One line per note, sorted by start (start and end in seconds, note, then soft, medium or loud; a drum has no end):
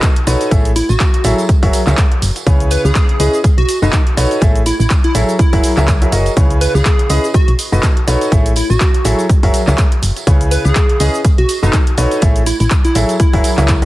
0.02 kick loud
0.02 clap loud
0.02 closed hi-hat medium
0.02 tambourine soft
0.02 cabasa soft
0.16 closed hi-hat medium
0.27 0.36 B1 medium
0.27 0.49 D#4 medium
0.27 0.49 F#4 medium
0.27 0.49 A4 medium
0.27 0.49 B4 medium
0.27 0.49 C#5 loud
0.27 open hi-hat loud
0.27 tambourine loud
0.27 cabasa medium
0.41 closed hi-hat soft
0.41 tambourine medium
0.41 cabasa soft
0.51 0.81 A1 loud
0.51 0.69 A3 medium
0.51 0.69 E4 medium
0.51 0.69 G#4 medium
0.51 0.69 A4 medium
0.51 0.69 C#5 medium
0.51 0.69 E5 loud
0.51 kick loud
0.51 closed hi-hat medium
0.51 tambourine soft
0.51 cabasa soft
0.65 closed hi-hat medium
0.65 cabasa soft
0.76 0.87 E4 medium
0.76 open hi-hat loud
0.76 tambourine medium
0.76 cabasa medium
0.89 0.96 A1 loud
0.89 1.38 F#4 medium
0.89 tambourine medium
0.89 cabasa soft
1.00 kick loud
1.00 clap loud
1.00 closed hi-hat medium
1.00 tambourine soft
1.00 cabasa soft
1.14 closed hi-hat medium
1.24 1.33 A1 medium
1.24 1.42 F#3 loud
1.24 1.42 E4 medium
1.24 1.42 G#4 medium
1.24 1.42 A4 medium
1.24 1.42 C#5 medium
1.24 1.42 E5 loud
1.24 open hi-hat loud
1.24 tambourine loud
1.24 cabasa medium
1.38 tambourine medium
1.38 cabasa soft
1.49 kick loud
1.49 closed hi-hat medium
1.49 cabasa soft
1.63 1.69 F#1 medium
1.63 1.79 F#3 medium
1.63 1.79 F#4 medium
1.63 1.79 G#4 medium
1.63 1.79 A#4 medium
1.63 1.79 C#5 medium
1.63 1.79 E5 loud
1.63 kick medium
1.63 open hi-hat medium
1.73 open hi-hat loud
1.73 tambourine loud
1.73 cabasa medium
1.86 1.94 C#2 loud
1.86 2.03 F#3 medium
1.86 2.03 F#4 medium
1.86 2.03 G#4 medium
1.86 2.03 A#4 medium
1.86 2.03 C#5 medium
1.86 2.03 E5 medium
1.86 clap soft
1.86 tambourine medium
1.86 cabasa soft
1.97 kick loud
1.97 clap loud
1.97 closed hi-hat medium
1.97 cabasa soft
2.12 closed hi-hat medium
2.22 2.31 F#1 medium
2.22 open hi-hat loud
2.22 tambourine loud
2.22 cabasa medium
2.36 closed hi-hat soft
2.36 tambourine medium
2.36 cabasa soft
2.47 2.76 C#2 loud
2.47 3.17 C#3 medium
2.47 3.17 C#4 medium
2.47 3.17 E4 medium
2.47 3.17 G#4 medium
2.47 3.17 B4 medium
2.47 3.17 C#5 medium
2.47 kick loud
2.47 closed hi-hat medium
2.47 tambourine soft
2.47 cabasa soft
2.60 closed hi-hat medium
2.60 cabasa soft
2.71 2.82 B4 medium
2.71 open hi-hat loud
2.71 tambourine loud
2.71 cabasa medium
2.85 2.91 C#2 loud
2.85 3.18 G#4 medium
2.85 tambourine medium
2.85 cabasa soft
2.95 kick loud
2.95 clap loud
2.95 closed hi-hat medium
2.95 cabasa soft
3.09 closed hi-hat medium
3.20 3.28 C#2 medium
3.20 3.38 C#4 medium
3.20 3.38 E4 medium
3.20 3.38 G#4 medium
3.20 3.37 G#4 medium
3.20 3.38 B4 medium
3.20 3.38 D#5 medium
3.20 open hi-hat loud
3.20 tambourine loud
3.20 cabasa medium
3.33 tambourine medium
3.33 cabasa soft
3.44 kick loud
3.44 closed hi-hat medium
3.44 tambourine soft
3.44 cabasa soft
3.58 3.64 B1 medium
3.58 3.79 F#4 loud
3.58 closed hi-hat medium
3.69 open hi-hat loud
3.69 tambourine loud
3.69 cabasa medium
3.82 3.89 F#1 loud
3.82 3.98 B2 medium
3.82 3.98 D#4 medium
3.82 3.97 D#4 medium
3.82 3.98 F#4 medium
3.82 3.98 A4 medium
3.82 3.98 B4 medium
3.82 3.98 D#5 medium
3.82 tambourine medium
3.82 cabasa soft
3.93 kick loud
3.93 clap loud
3.93 closed hi-hat medium
3.93 cabasa soft
4.07 closed hi-hat medium
4.17 4.26 B1 medium
4.17 4.39 D#4 medium
4.17 4.39 F#4 medium
4.17 4.39 A4 medium
4.17 4.39 B4 medium
4.17 4.39 C#5 loud
4.17 open hi-hat loud
4.17 tambourine loud
4.17 cabasa medium
4.31 closed hi-hat soft
4.31 tambourine medium
4.31 cabasa soft
4.41 4.72 A1 medium
4.41 4.60 A3 medium
4.41 4.60 E4 medium
4.41 4.60 G#4 medium
4.41 4.60 A4 medium
4.41 4.60 C#5 medium
4.41 4.60 E5 loud
4.41 kick loud
4.41 closed hi-hat medium
4.41 tambourine soft
4.41 cabasa soft
4.56 closed hi-hat soft
4.56 cabasa soft
4.66 4.75 E4 medium
4.66 open hi-hat loud
4.66 tambourine loud
4.66 cabasa medium
4.80 4.86 A1 loud
4.80 4.87 E4 medium
4.80 tambourine medium
4.80 cabasa soft
4.90 kick loud
4.90 clap loud
4.90 closed hi-hat medium
4.90 tambourine soft
4.90 cabasa soft
5.04 5.19 E4 loud
5.04 closed hi-hat soft
5.15 5.23 A1 medium
5.15 5.33 F#3 loud
5.15 5.33 E4 medium
5.15 5.33 G#4 medium
5.15 5.33 A4 medium
5.15 5.33 C#5 medium
5.15 5.33 E5 loud
5.15 open hi-hat loud
5.15 tambourine loud
5.15 cabasa medium
5.29 tambourine medium
5.29 cabasa soft
5.39 6.08 E4 medium
5.39 kick loud
5.39 closed hi-hat medium
5.39 tambourine soft
5.39 cabasa soft
5.53 5.60 F#1 medium
5.53 5.69 F#3 medium
5.53 5.69 F#4 medium
5.53 5.69 G#4 medium
5.53 5.69 A#4 medium
5.53 5.69 C#5 medium
5.53 5.69 E5 loud
5.53 kick medium
5.53 open hi-hat medium
5.63 open hi-hat loud
5.63 tambourine loud
5.63 cabasa medium
5.77 6.06 C#2 medium
5.77 5.93 F#3 medium
5.77 5.93 F#4 medium
5.77 5.93 G#4 medium
5.77 5.93 A#4 medium
5.77 5.93 C#5 medium
5.77 5.93 E5 loud
5.77 clap soft
5.77 tambourine medium
5.77 cabasa soft
5.88 kick loud
5.88 clap loud
5.88 closed hi-hat medium
5.88 tambourine soft
5.88 cabasa soft
6.02 6.11 F#3 medium
6.02 6.11 F#4 medium
6.02 6.11 G#4 medium
6.02 6.11 A#4 medium
6.02 6.11 C#5 medium
6.02 6.11 E5 medium
6.02 closed hi-hat medium
6.02 cabasa soft
6.12 6.29 F#1 medium
6.12 6.30 F#4 medium
6.12 6.30 G#4 medium
6.12 6.30 A#4 medium
6.12 6.30 C#5 medium
6.12 6.30 D#5 medium
6.12 open hi-hat loud
6.12 tambourine medium
6.12 cabasa medium
6.26 closed hi-hat soft
6.26 tambourine soft
6.26 cabasa soft
6.37 6.67 C#2 loud
6.37 7.07 C#3 medium
6.37 7.07 C#4 medium
6.37 7.07 E4 medium
6.37 7.07 G#4 medium
6.37 7.07 B4 medium
6.37 7.07 C#5 medium
6.37 kick loud
6.37 closed hi-hat medium
6.37 tambourine soft
6.37 cabasa soft
6.50 closed hi-hat medium
6.50 cabasa soft
6.61 6.72 B4 medium
6.61 open hi-hat loud
6.61 tambourine loud
6.61 cabasa medium
6.75 6.81 C#2 loud
6.75 7.08 G#4 loud
6.75 tambourine medium
6.75 cabasa soft
6.85 kick loud
6.85 clap loud
6.85 closed hi-hat medium
6.85 cabasa soft
6.99 closed hi-hat medium
7.10 7.18 C#2 medium
7.10 7.28 C#4 medium
7.10 7.28 E4 medium
7.10 7.27 G#4 medium
7.10 7.28 G#4 medium
7.10 7.28 B4 medium
7.10 7.28 D#5 medium
7.10 open hi-hat loud
7.10 tambourine loud
7.10 cabasa medium
7.24 tambourine medium
7.24 cabasa soft
7.34 7.51 F#4 medium
7.34 kick loud
7.34 closed hi-hat medium
7.34 tambourine soft
7.34 cabasa soft
7.48 7.55 B1 medium
7.48 closed hi-hat medium
7.59 open hi-hat loud
7.59 tambourine loud
7.59 cabasa medium
7.72 7.79 F#1 loud
7.72 7.88 B2 medium
7.72 7.88 D#4 medium
7.72 7.88 F#4 medium
7.72 7.88 A4 medium
7.72 7.88 B4 medium
7.72 7.88 D#5 medium
7.72 tambourine medium
7.72 cabasa soft
7.83 kick loud
7.83 clap loud
7.83 closed hi-hat medium
7.83 tambourine soft
7.83 cabasa soft
7.97 closed hi-hat medium
8.07 8.16 B1 medium
8.07 8.29 D#4 medium
8.07 8.29 F#4 medium
8.07 8.29 A4 medium
8.07 8.29 B4 medium
8.07 8.29 C#5 loud
8.07 open hi-hat loud
8.07 tambourine medium
8.07 cabasa medium
8.21 closed hi-hat soft
8.21 tambourine medium
8.21 cabasa soft
8.31 8.62 A1 loud
8.31 8.50 A3 loud
8.31 8.50 E4 medium
8.31 8.50 G#4 medium
8.31 8.50 A4 medium
8.31 8.50 C#5 medium
8.31 8.50 E5 loud
8.31 kick loud
8.31 closed hi-hat medium
8.31 tambourine soft
8.31 cabasa soft
8.46 closed hi-hat medium
8.46 cabasa soft
8.56 8.67 E4 medium
8.56 open hi-hat loud
8.56 tambourine medium
8.56 cabasa medium
8.70 8.77 A1 loud
8.70 9.19 F#4 loud
8.70 tambourine medium
8.70 cabasa soft
8.80 kick loud
8.80 clap loud
8.80 closed hi-hat medium
8.80 cabasa soft
8.94 closed hi-hat medium
9.05 9.14 A1 medium
9.05 9.23 F#3 medium
9.05 9.23 E4 medium
9.05 9.23 G#4 medium
9.05 9.23 A4 medium
9.05 9.23 C#5 medium
9.05 9.23 E5 loud
9.05 open hi-hat loud
9.05 tambourine medium
9.05 cabasa medium
9.19 tambourine medium
9.19 cabasa soft
9.29 kick loud
9.29 closed hi-hat medium
9.29 tambourine soft
9.29 cabasa soft
9.43 9.50 F#1 medium
9.43 9.59 F#3 medium
9.43 9.59 F#4 medium
9.43 9.59 G#4 medium
9.43 9.59 A#4 medium
9.43 9.59 C#5 medium
9.43 9.59 E5 loud
9.43 kick medium
9.43 open hi-hat medium
9.54 open hi-hat loud
9.54 tambourine medium
9.54 cabasa medium
9.67 9.74 C#2 loud
9.67 9.84 F#3 medium
9.67 9.84 F#4 medium
9.67 9.84 G#4 medium
9.67 9.84 A#4 medium
9.67 9.84 C#5 medium
9.67 9.84 E5 medium
9.67 clap soft
9.67 tambourine medium
9.67 cabasa soft
9.78 kick loud
9.78 clap loud
9.78 closed hi-hat medium
9.78 cabasa soft
9.92 closed hi-hat medium
10.02 10.11 F#1 medium
10.02 open hi-hat loud
10.02 tambourine medium
10.02 cabasa medium
10.16 closed hi-hat soft
10.16 tambourine medium
10.16 cabasa soft
10.27 10.57 C#2 loud
10.27 10.98 C#3 medium
10.27 10.98 C#4 medium
10.27 10.98 E4 medium
10.27 10.98 G#4 medium
10.27 10.98 B4 medium
10.27 10.98 C#5 medium
10.27 kick loud
10.27 closed hi-hat medium
10.27 cabasa soft
10.41 closed hi-hat medium
10.41 cabasa soft
10.51 10.62 B4 medium
10.51 open hi-hat loud
10.51 tambourine medium
10.51 cabasa medium
10.65 10.72 C#2 loud
10.65 10.98 G#4 loud
10.65 tambourine medium
10.65 cabasa soft
10.75 kick loud
10.75 clap loud
10.75 closed hi-hat medium
10.75 cabasa soft
10.89 closed hi-hat medium
11.00 11.09 C#2 medium
11.00 11.18 C#4 medium
11.00 11.18 E4 medium
11.00 11.17 G#4 medium
11.00 11.18 G#4 medium
11.00 11.18 B4 medium
11.00 11.18 D#5 medium
11.00 open hi-hat loud
11.00 tambourine loud
11.00 cabasa medium
11.14 tambourine medium
11.14 cabasa soft
11.25 kick loud
11.25 closed hi-hat medium
11.25 tambourine soft
11.25 cabasa soft
11.38 11.45 B1 medium
11.38 11.60 F#4 medium
11.38 closed hi-hat medium
11.49 open hi-hat loud
11.49 tambourine medium
11.49 cabasa medium
11.63 11.69 F#1 loud
11.63 11.79 B2 medium
11.63 11.78 D#4 medium
11.63 11.79 D#4 medium
11.63 11.79 F#4 medium
11.63 11.79 A4 medium
11.63 11.79 B4 medium
11.63 11.79 D#5 medium
11.63 tambourine medium
11.63 cabasa soft
11.73 kick loud
11.73 clap loud
11.73 closed hi-hat medium
11.73 tambourine soft
11.73 cabasa soft
11.87 closed hi-hat medium
11.97 12.06 B1 medium
11.97 12.20 D#4 medium
11.97 12.20 F#4 medium
11.97 12.20 A4 medium
11.97 12.20 B4 medium
11.97 12.20 C#5 loud
11.97 open hi-hat loud
11.97 tambourine medium
11.97 cabasa medium
12.11 closed hi-hat soft
12.11 tambourine soft
12.11 cabasa soft
12.21 12.52 A1 loud
12.21 12.40 A3 medium
12.21 12.40 E4 medium
12.21 12.40 G#4 medium
12.21 12.40 A4 medium
12.21 12.40 C#5 medium
12.21 12.40 E5 loud
12.21 kick loud
12.21 closed hi-hat medium
12.21 tambourine soft
12.21 cabasa soft
12.36 closed hi-hat medium
12.36 cabasa soft
12.46 12.55 E4 medium
12.46 open hi-hat loud
12.46 tambourine medium
12.46 cabasa medium
12.60 12.67 A1 loud
12.60 12.67 E4 medium
12.60 closed hi-hat soft
12.60 tambourine medium
12.60 cabasa soft
12.70 kick loud
12.70 clap loud
12.70 closed hi-hat medium
12.70 cabasa soft
12.85 13.00 E4 loud
12.85 closed hi-hat medium
12.85 cabasa soft
12.95 13.04 A1 medium
12.95 13.13 F#3 medium
12.95 13.13 E4 medium
12.95 13.13 G#4 medium
12.95 13.13 A4 medium
12.95 13.13 C#5 medium
12.95 13.13 E5 loud
12.95 open hi-hat loud
12.95 tambourine loud
12.95 cabasa medium
13.09 closed hi-hat soft
13.09 tambourine soft
13.09 cabasa soft
13.20 13.85 E4 medium
13.20 kick loud
13.20 closed hi-hat medium
13.20 cabasa soft
13.33 13.40 F#1 medium
13.33 13.49 F#3 medium
13.33 13.49 F#4 medium
13.33 13.49 G#4 medium
13.33 13.49 A#4 medium
13.33 13.49 C#5 medium
13.33 13.49 E5 loud
13.33 kick medium
13.33 open hi-hat medium
13.44 open hi-hat loud
13.44 tambourine loud
13.44 cabasa medium
13.57 13.85 C#2 medium
13.57 13.74 F#3 medium
13.57 13.74 F#4 medium
13.57 13.74 G#4 medium
13.57 13.74 A#4 medium
13.57 13.74 C#5 medium
13.57 13.74 E5 loud
13.57 clap soft
13.57 closed hi-hat soft
13.57 tambourine medium
13.57 cabasa soft
13.68 kick loud
13.68 clap loud
13.68 closed hi-hat medium
13.68 tambourine soft
13.68 cabasa soft